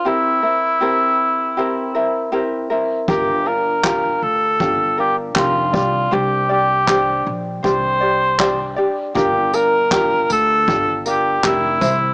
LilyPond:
<<
  \new Staff \with { instrumentName = "Cor anglais" } { \time 4/4 \key g \dorian \tempo 4 = 79 e'2. r4 | g'8 bes'4 a'4 g'8 f'8 f'8 | g'8 g'4 r8 c''4. r8 | g'8 bes'4 a'4 g'8 e'4 | }
  \new Staff \with { instrumentName = "Ukulele" } { \time 4/4 \key g \dorian <c' e' g' bes'>8 <c' e' bes'>8 <c' e' g' bes'>4 <c' e' g' bes'>8 <c' e' bes'>8 <c' e' g' bes'>8 <c' e' bes'>8 | <d' f' g' bes'>8 <d' f' bes'>8 <d' f' g'>4 <d' f' g'>8 <d' f' bes'>8 <d' f' g' bes'>8 <d' g' d''>8 | <d' g' c'' d''>8 <d' g' d''>8 <d' g' c'' d''>4 <d' g' c'' d''>8 <d' g' d''>8 <d' g' c'' d''>8 <d' g' d''>8 | <d' f' g' bes'>8 <d' f' bes'>8 <d' f' g'>4 <d' f' g'>8 <d' f' bes'>8 <d' g' bes'>8 <c' e' c''>8 | }
  \new Staff \with { instrumentName = "Upright bass" } { \clef bass \time 4/4 \key g \dorian r1 | g,,4. d,8 g,,4 f,,8 c,8 | c,4. bes,,8 c,4. r8 | g,,4. d,8 g,,4 f,,8 c,8 | }
  \new DrumStaff \with { instrumentName = "Drums" } \drummode { \time 4/4 r4 r4 r4 r4 | bd4 <hc bd>4 bd4 <hc bd>8 bd8 | r4 <hc bd>4 bd4 <hc bd>4 | bd8 tamb8 <hc bd>8 tamb8 bd8 tamb8 <hc bd>8 <bd tamb>8 | }
>>